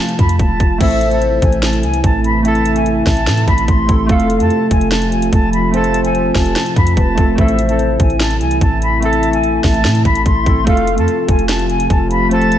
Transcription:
Already playing: analog synth pad C3 F3 A3 F4, flute A5
0.09 closed hi-hat
0.19 808-style bass F2, flute B5, kick, closed hi-hat
0.29 closed hi-hat
0.39 808-style bass E1, flute A5, kick, closed hi-hat
0.60 808-style bass F1, kick, closed hi-hat
0.78 808-style bass A1, analog synth pad C3 E3 A3 E4, synth keys A3 C4 E4, soft synth lead C5, flute E5, kick, closed hi-hat, crash
0.83 synth keys A4
0.91 closed hi-hat
1.01 closed hi-hat
1.09 synth keys A3 C4 E4, flute A5, closed hi-hat
1.14 synth keys A4
1.22 closed hi-hat
1.42 808-style bass A1, flute G#5, kick, closed hi-hat
1.52 closed hi-hat
1.62 flute A5, snare, closed hi-hat
1.73 closed hi-hat
1.83 808-style bass C2, flute G#5, closed hi-hat
1.94 closed hi-hat
2.04 808-style bass A1, flute A5, kick, closed hi-hat
2.24 flute B5, closed hi-hat
2.42 synth keys A3 C4 E4, soft synth lead E5, flute A5, closed hi-hat
2.48 synth keys A4
2.55 closed hi-hat
2.65 closed hi-hat
2.73 synth keys A3 C4 E4, flute G#5, closed hi-hat
2.78 synth keys A4
2.86 closed hi-hat
3.07 808-style bass A1, flute A5, kick, snare, open hi-hat
3.17 closed hi-hat
3.27 808-style bass A2, snare, closed hi-hat
3.37 closed hi-hat
3.47 808-style bass A1, flute B5, kick, closed hi-hat
3.58 closed hi-hat
3.68 808-style bass A1, flute C6, kick, closed hi-hat
3.86 808-style bass A1, synth keys A3 C4 E4, kick, closed hi-hat
3.92 synth keys A4
4.06 808-style bass F1, analog synth pad F3 F4, synth keys A3 C4 F4, soft synth lead A4, flute F5, kick, closed hi-hat
4.12 synth keys A4
4.20 closed hi-hat
4.30 closed hi-hat
4.37 808-style bass F2, synth keys A3 C4 F4, flute A5, closed hi-hat
4.43 synth keys A4
4.50 closed hi-hat
4.71 808-style bass F1, flute G#5, kick, closed hi-hat
4.81 closed hi-hat
4.92 flute A5, snare, closed hi-hat
5.02 closed hi-hat
5.12 flute G#5, closed hi-hat
5.22 closed hi-hat
5.33 808-style bass F1, flute A5, kick, closed hi-hat
5.53 flute B5, closed hi-hat
5.71 synth keys A3 C4 F4, soft synth lead C5, flute A5, closed hi-hat
5.77 synth keys A4
5.84 closed hi-hat
5.94 closed hi-hat
6.02 synth keys A3 C4 F4, flute G#5, closed hi-hat
6.07 synth keys A4
6.15 closed hi-hat
6.35 808-style bass F1, flute A5, kick, snare, open hi-hat
6.46 closed hi-hat
6.56 snare, closed hi-hat
6.66 closed hi-hat
6.76 808-style bass F2, flute B5, kick, closed hi-hat
6.87 closed hi-hat
6.97 808-style bass E1, soft synth lead B4, flute A5, kick, closed hi-hat
7.15 808-style bass F1, synth keys A3 C4 F4, soft synth lead A4, kick, closed hi-hat
7.20 synth keys A4
7.35 808-style bass A1, analog synth pad E3 E4, synth keys A3 C4 E4, soft synth lead C5, flute E5, kick, closed hi-hat
7.41 synth keys A4
7.48 closed hi-hat
7.59 closed hi-hat
7.66 synth keys A3 C4 E4, flute A5, closed hi-hat
7.72 synth keys A4
7.79 closed hi-hat
8.00 808-style bass A1, flute G#5, kick, closed hi-hat
8.10 closed hi-hat
8.20 flute A5, snare, closed hi-hat
8.31 closed hi-hat
8.41 808-style bass C2, flute G#5, closed hi-hat
8.51 closed hi-hat
8.61 808-style bass A1, flute A5, kick, closed hi-hat
8.82 flute B5, closed hi-hat
9.00 synth keys A3 C4 E4, soft synth lead E5, flute A5, closed hi-hat
9.05 synth keys A4
9.13 closed hi-hat
9.23 closed hi-hat
9.31 synth keys A3 C4 E4, flute G#5, closed hi-hat
9.36 synth keys A4
9.44 closed hi-hat
9.64 808-style bass A1, flute A5, kick, snare, open hi-hat
9.74 closed hi-hat
9.85 808-style bass A2, snare, closed hi-hat
9.95 closed hi-hat
10.05 808-style bass A1, flute B5, kick, closed hi-hat
10.15 closed hi-hat
10.26 808-style bass A1, flute C6, kick, closed hi-hat
10.44 808-style bass A1, synth keys A3 C4 E4, kick, closed hi-hat
10.49 synth keys A4
10.64 808-style bass F1, analog synth pad C3 F3 A3 F4, synth keys A3 C4 F4, soft synth lead A4, flute F5, kick, closed hi-hat
10.69 synth keys A4
10.77 closed hi-hat
10.87 closed hi-hat
10.95 808-style bass F2, synth keys A3 C4 F4, flute A5, closed hi-hat
11.00 synth keys A4
11.08 closed hi-hat
11.28 808-style bass F1, flute G#5, kick, closed hi-hat
11.39 closed hi-hat
11.49 flute A5, snare, closed hi-hat
11.59 closed hi-hat
11.69 flute G#5, closed hi-hat
11.80 closed hi-hat
11.90 808-style bass F1, flute A5, kick, closed hi-hat
12.10 flute B5, closed hi-hat
12.29 synth keys A3 C4 F4, soft synth lead C5, flute A5, closed hi-hat
12.34 synth keys A4
12.42 closed hi-hat
12.52 closed hi-hat

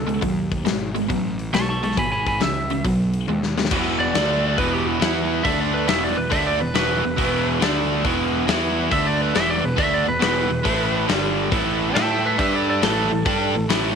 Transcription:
Already playing: picked electric bass C#2, lead electric guitar A4
0.07 overdriven electric guitar B2 G#3, open hi-hat
0.21 picked electric bass D#2, overdriven electric guitar B2 F#3, kick, open hi-hat
0.52 kick, open hi-hat
0.65 picked electric bass G#1, overdriven electric guitar B2 G#3, snare, open hi-hat
0.94 overdriven electric guitar B2 G#3, open hi-hat
1.08 picked electric bass A1, overdriven electric guitar B2 F#3, kick, open hi-hat
1.39 open hi-hat
1.53 picked electric bass B1, overdriven electric guitar B2 G#3, lead electric guitar A5 C#6, snare, open hi-hat
1.69 lead electric guitar A5 C#6
1.83 overdriven electric guitar B2 G#3, lead electric guitar A5 C#6, open hi-hat
1.92 snare
1.97 picked electric bass G#1, overdriven electric guitar E2 B2, lead electric guitar G#5 B5, kick, open hi-hat
2.12 lead electric guitar G#5 B5
2.27 lead electric guitar G#5 B5, kick, open hi-hat
2.41 picked electric bass C#2, overdriven electric guitar E2 C#3, lead electric guitar E5, snare, open hi-hat
2.70 overdriven electric guitar E2 C#3, open hi-hat
2.84 picked electric bass B1, overdriven electric guitar B2 F#3, kick, open hi-hat
3.14 open hi-hat
3.27 picked electric bass D#2, overdriven electric guitar B2 G#3, high tom
3.43 snare
3.57 overdriven electric guitar B2 G#3, snare
3.65 snare
3.71 picked electric bass E1, overdriven electric guitar E2 B2 E3, kick, crash
4.00 lead electric guitar D5
4.14 picked electric bass D2, overdriven electric guitar D3 A3 D4, snare, open hi-hat
4.58 picked electric bass E1, overdriven electric guitar E2 B2 E3, lead electric guitar B4, kick, open hi-hat
4.73 lead electric guitar G4
4.87 lead electric guitar E4
5.00 picked electric bass E2, overdriven electric guitar E3 B3 E4, snare, open hi-hat
5.44 picked electric bass D2, overdriven electric guitar D3 A3 D4, lead electric guitar E5, kick, open hi-hat
5.60 lead electric guitar D5
5.74 lead electric guitar B4
5.87 picked electric bass E1, overdriven electric guitar E2 B2 E3, lead electric guitar E5, snare, open hi-hat
6.04 lead electric guitar D5
6.16 picked electric bass E1, overdriven electric guitar E2 B2, lead electric guitar B4
6.30 picked electric bass D2, overdriven electric guitar D3 A3 D4, lead electric guitar E5, kick, open hi-hat
6.47 lead electric guitar D5
6.60 picked electric bass E1, overdriven electric guitar E2 B2, lead electric guitar B4
6.74 picked electric bass E1, overdriven electric guitar E2 B2 E3, lead electric guitar B4, snare, open hi-hat
7.04 picked electric bass E1, overdriven electric guitar E2 B2
7.17 picked electric bass E1, overdriven electric guitar E2 B2 E3, kick, open hi-hat
7.61 picked electric bass D2, overdriven electric guitar D3 A3 D4, snare, open hi-hat
8.04 picked electric bass E1, overdriven electric guitar E2 B2 E3, kick, open hi-hat
8.47 picked electric bass E2, overdriven electric guitar E3 B3 E4, snare, open hi-hat
8.91 picked electric bass D2, overdriven electric guitar D3 A3 D4, lead electric guitar E5, kick, open hi-hat
9.06 lead electric guitar D5
9.21 lead electric guitar B4
9.34 picked electric bass E1, overdriven electric guitar E2 B2 E3, lead electric guitar E5, snare, open hi-hat
9.50 lead electric guitar D5
9.62 picked electric bass E1, overdriven electric guitar E2 B2, lead electric guitar B4
9.76 picked electric bass D2, overdriven electric guitar D3 A3 D4, lead electric guitar E5, kick, open hi-hat
9.94 lead electric guitar D5
10.05 picked electric bass E1, overdriven electric guitar E2 B2, lead electric guitar B4
10.20 picked electric bass E1, overdriven electric guitar E2 B2 E3, lead electric guitar B4, snare, open hi-hat
10.50 picked electric bass E1, overdriven electric guitar E2 B2
10.64 picked electric bass A1, overdriven electric guitar A2 E3 A3, kick, open hi-hat
11.07 picked electric bass G1, overdriven electric guitar G2 D3 G3, snare, open hi-hat
11.51 picked electric bass A1, overdriven electric guitar A2 E3 A3, kick, open hi-hat
11.95 picked electric bass A2, overdriven electric guitar A3 E4 A4, lead electric guitar E5 G5, snare, open hi-hat
12.11 lead electric guitar E5 G5
12.26 lead electric guitar B4 E5
12.38 picked electric bass G2, overdriven electric guitar G3 D4 G4, lead electric guitar B4 E5, kick, open hi-hat
12.54 lead electric guitar A4 D5
12.69 lead electric guitar A4 D5
12.81 picked electric bass A1, overdriven electric guitar A2 E3 A3, lead electric guitar A4, snare, open hi-hat
13.11 picked electric bass A1, overdriven electric guitar A2 E3
13.25 picked electric bass G2, overdriven electric guitar G3 D4 G4, kick, open hi-hat
13.54 picked electric bass A1, overdriven electric guitar A2 E3
13.68 picked electric bass A1, overdriven electric guitar A2 E3 A3, snare, open hi-hat

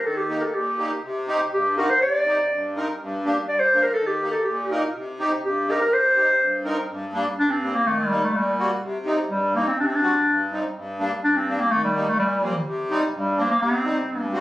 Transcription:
0.03 accordion D#3, clarinet A4
0.17 clarinet G4
0.29 accordion A#3 D#4 G4
0.41 clarinet A4 A#4
0.54 accordion A#2, clarinet G4
0.78 accordion A#3 D#4 G4
1.03 accordion C3
1.28 accordion C4 D#4 G4
1.53 accordion G2, clarinet G4
1.77 accordion C4 D#4 F#4, clarinet A#4
1.90 clarinet C5
2.02 accordion C3, clarinet D5
2.26 accordion C4 D#4 G4
2.51 accordion G2
2.76 accordion C4 D#4 A#4
3.00 accordion G2
3.25 accordion A#3 D4 G4
3.48 accordion G2, clarinet D5
3.60 clarinet C5
3.74 accordion A#3 D4 A#4
3.83 clarinet A#4
3.94 clarinet A4
3.98 accordion D#3
4.07 clarinet G4
4.22 accordion A#3 D#4 G4
4.31 clarinet A4
4.45 accordion A#2, clarinet G4
4.71 accordion A#3 D#4 A#4
4.95 accordion C3
5.19 accordion C4 D#4 G4
5.44 accordion G2, clarinet G4
5.67 accordion C4 D#4 G4, clarinet A#4
5.81 clarinet A#4
5.92 accordion C3, clarinet C5
6.17 accordion C4 D#4 G4
6.41 accordion G2
6.65 accordion C4 D#4 A#4
6.89 accordion G2
7.13 accordion G3 A#3 D4
7.38 accordion G2, clarinet D4
7.50 clarinet C4
7.62 accordion G3 A#3 C4
7.75 clarinet A#3
7.85 accordion D#3, clarinet A3
7.99 clarinet G3
8.10 accordion G3 A#3 D#4
8.24 clarinet A3
8.34 accordion A#2, clarinet G3
8.59 accordion G3 A#3 F#4
8.83 accordion C3
9.06 accordion G3 C4 D#4
9.30 accordion G2, clarinet G3
9.54 accordion G3 C4 D#4, clarinet A#3
9.67 clarinet C4
9.79 accordion C3, clarinet D4
9.86 clarinet C4
9.95 clarinet D4
10.03 accordion G3 C4 F#4
10.27 accordion G2
10.51 accordion G3 C4 D#4
10.75 accordion G2
10.99 accordion G3 A#3 D4
11.24 accordion G2, clarinet D4
11.37 clarinet C4
11.48 accordion G3 A#3 D4
11.60 clarinet A#3
11.71 accordion D#3, clarinet A3
11.84 clarinet G3
11.95 accordion G3 A#3 D#4
12.08 clarinet A3
12.19 accordion A#2, clarinet G3
12.42 accordion G3 A#3 C4
12.66 accordion C3
12.90 accordion G3 C4 D#4
13.13 accordion G2, clarinet G3
13.37 accordion G3 C4 D4, clarinet A#3
13.50 clarinet A#3
13.61 accordion C3, clarinet C4
13.84 accordion G3 C4 D#4
14.09 accordion G2
14.32 accordion G3 C4 F#4

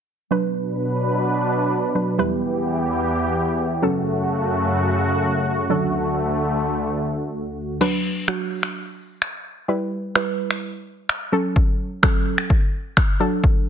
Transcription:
0.31 supersaw synth B2 F#3 D4 B4, synth pluck F#3 D4 B4
1.95 synth pluck F#3 D4 B4
2.18 supersaw synth E2 E3 B3 G4, synth pluck G3 E4 B4
3.82 supersaw synth F#2 C#3 A3 F#4, synth pluck F#3 C#4 A4
5.70 supersaw synth D2 D3 A3, synth pluck F#3 D4 A4
7.81 synth pluck F#3 D4 B4, crash
8.28 synth pluck F#3 D4 F#4, finger snap
8.63 finger snap
9.22 finger snap
9.68 synth pluck G3 E4 B4
10.15 synth pluck G3 E4 B4, finger snap
10.51 finger snap
11.09 finger snap
11.32 synth pluck F#3 C#4 A4
11.56 kick
12.03 synth pluck F#3 C#4 A4, finger snap, kick
12.38 finger snap
12.50 kick
12.97 finger snap, kick
13.20 synth pluck F#3 D4 A4
13.44 kick

